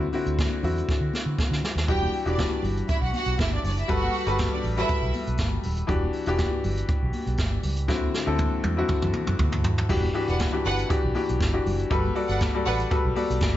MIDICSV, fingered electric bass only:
0, 0, Header, 1, 2, 480
1, 0, Start_track
1, 0, Key_signature, 1, "minor"
1, 0, Tempo, 500835
1, 1813, Time_signature, 4, 2, 24, 8
1, 13004, End_track
2, 0, Start_track
2, 0, Title_t, "Fingered electric bass"
2, 0, Program_c, 0, 33
2, 253, Note_on_c, 0, 38, 91
2, 427, Note_off_c, 0, 38, 0
2, 606, Note_on_c, 0, 40, 79
2, 780, Note_off_c, 0, 40, 0
2, 965, Note_on_c, 0, 50, 91
2, 1051, Note_off_c, 0, 50, 0
2, 1207, Note_on_c, 0, 50, 90
2, 1292, Note_off_c, 0, 50, 0
2, 1445, Note_on_c, 0, 50, 103
2, 1531, Note_off_c, 0, 50, 0
2, 1681, Note_on_c, 0, 39, 74
2, 1769, Note_off_c, 0, 39, 0
2, 1806, Note_on_c, 0, 28, 96
2, 1980, Note_off_c, 0, 28, 0
2, 2165, Note_on_c, 0, 28, 90
2, 2342, Note_off_c, 0, 28, 0
2, 2515, Note_on_c, 0, 31, 79
2, 2693, Note_off_c, 0, 31, 0
2, 2891, Note_on_c, 0, 35, 89
2, 2974, Note_off_c, 0, 35, 0
2, 3126, Note_on_c, 0, 35, 84
2, 3211, Note_off_c, 0, 35, 0
2, 3251, Note_on_c, 0, 31, 91
2, 3422, Note_off_c, 0, 31, 0
2, 3485, Note_on_c, 0, 30, 90
2, 3658, Note_off_c, 0, 30, 0
2, 3731, Note_on_c, 0, 31, 96
2, 3903, Note_off_c, 0, 31, 0
2, 4090, Note_on_c, 0, 31, 96
2, 4264, Note_off_c, 0, 31, 0
2, 4447, Note_on_c, 0, 33, 78
2, 4619, Note_off_c, 0, 33, 0
2, 4813, Note_on_c, 0, 35, 86
2, 4895, Note_off_c, 0, 35, 0
2, 5055, Note_on_c, 0, 35, 83
2, 5136, Note_off_c, 0, 35, 0
2, 5163, Note_on_c, 0, 31, 92
2, 5337, Note_off_c, 0, 31, 0
2, 5406, Note_on_c, 0, 27, 85
2, 5578, Note_off_c, 0, 27, 0
2, 5640, Note_on_c, 0, 28, 95
2, 5815, Note_off_c, 0, 28, 0
2, 6007, Note_on_c, 0, 28, 92
2, 6182, Note_off_c, 0, 28, 0
2, 6366, Note_on_c, 0, 31, 97
2, 6538, Note_off_c, 0, 31, 0
2, 6734, Note_on_c, 0, 35, 86
2, 6815, Note_off_c, 0, 35, 0
2, 6965, Note_on_c, 0, 35, 83
2, 7049, Note_off_c, 0, 35, 0
2, 7078, Note_on_c, 0, 31, 95
2, 7253, Note_off_c, 0, 31, 0
2, 7319, Note_on_c, 0, 37, 84
2, 7558, Note_off_c, 0, 37, 0
2, 7558, Note_on_c, 0, 38, 109
2, 7732, Note_off_c, 0, 38, 0
2, 7926, Note_on_c, 0, 38, 99
2, 8100, Note_off_c, 0, 38, 0
2, 8280, Note_on_c, 0, 40, 78
2, 8454, Note_off_c, 0, 40, 0
2, 8649, Note_on_c, 0, 42, 89
2, 8732, Note_off_c, 0, 42, 0
2, 8895, Note_on_c, 0, 42, 98
2, 8975, Note_off_c, 0, 42, 0
2, 8999, Note_on_c, 0, 38, 97
2, 9249, Note_off_c, 0, 38, 0
2, 9249, Note_on_c, 0, 39, 87
2, 9420, Note_off_c, 0, 39, 0
2, 9483, Note_on_c, 0, 28, 103
2, 9656, Note_off_c, 0, 28, 0
2, 9855, Note_on_c, 0, 28, 98
2, 10026, Note_off_c, 0, 28, 0
2, 10209, Note_on_c, 0, 31, 88
2, 10380, Note_off_c, 0, 31, 0
2, 10581, Note_on_c, 0, 35, 95
2, 10659, Note_off_c, 0, 35, 0
2, 10826, Note_on_c, 0, 35, 86
2, 10903, Note_off_c, 0, 35, 0
2, 10932, Note_on_c, 0, 31, 95
2, 11102, Note_off_c, 0, 31, 0
2, 11170, Note_on_c, 0, 30, 83
2, 11340, Note_off_c, 0, 30, 0
2, 11410, Note_on_c, 0, 31, 105
2, 11581, Note_off_c, 0, 31, 0
2, 11779, Note_on_c, 0, 31, 103
2, 11949, Note_off_c, 0, 31, 0
2, 12139, Note_on_c, 0, 33, 83
2, 12306, Note_off_c, 0, 33, 0
2, 12508, Note_on_c, 0, 35, 87
2, 12584, Note_off_c, 0, 35, 0
2, 12748, Note_on_c, 0, 35, 77
2, 12825, Note_off_c, 0, 35, 0
2, 12856, Note_on_c, 0, 31, 95
2, 13004, Note_off_c, 0, 31, 0
2, 13004, End_track
0, 0, End_of_file